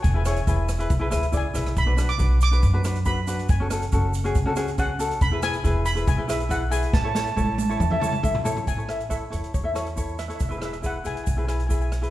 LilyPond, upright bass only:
\new Staff \with { instrumentName = "Upright bass" } { \clef bass \time 4/4 \key a \major \tempo 4 = 139 e,,4 e,,4 b,,8 d,8 cis,8 b,,8 | b,,4 b,,4 fis,2 | fis,,4 fis,,4 cis,2 | e,,4 e,,4 b,,2 |
a,,4 a,,4 e,2 | a,,4. e,8 e,2 | e,,4. b,,8 b,,2 | }